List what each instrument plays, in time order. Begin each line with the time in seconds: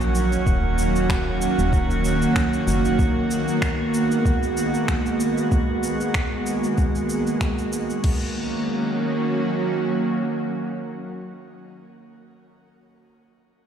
Already playing: fm bass A#1, synth drone D#3 F#3 A#3 C#4 F#4, synth texture F#4 F#5
0.01 cabasa
0.15 cabasa
0.32 cabasa
0.47 fm bass D#1, kick, cabasa
0.78 cabasa
0.96 cabasa
1.10 finger snap, kick, cabasa
1.42 cabasa
1.59 fm bass D#1, cabasa
1.73 kick, cabasa
1.91 cabasa
2.05 cabasa
2.22 cabasa
2.36 finger snap, kick, cabasa
2.53 cabasa
2.68 fm bass F#1, cabasa
2.85 cabasa
2.99 synth drone G#3 B3, kick, cabasa
3.31 cabasa
3.48 cabasa
3.62 finger snap, kick, cabasa
3.94 cabasa
4.12 cabasa
4.25 kick, cabasa
4.43 cabasa
4.57 cabasa
4.74 cabasa
4.88 finger snap, kick, cabasa
5.06 cabasa
5.20 cabasa
5.38 cabasa
5.52 kick, cabasa
5.83 cabasa
6.01 cabasa
6.14 finger snap, kick, cabasa
6.47 cabasa
6.64 cabasa
6.78 kick, cabasa
6.95 cabasa
7.10 cabasa
7.27 cabasa
7.41 finger snap, kick, cabasa
7.59 cabasa
7.73 cabasa
7.90 cabasa
8.04 synth drone D#3 F#3 A#3 C#4 F#4, kick, crash